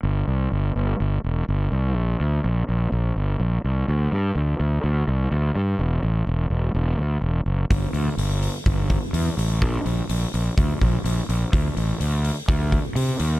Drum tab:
HH |--------|--------|--------|--------|
BD |--------|--------|--------|--------|

HH |oooooooo|oooooooo|oooooooo|
BD |o---oo--|o---oo--|o---oo--|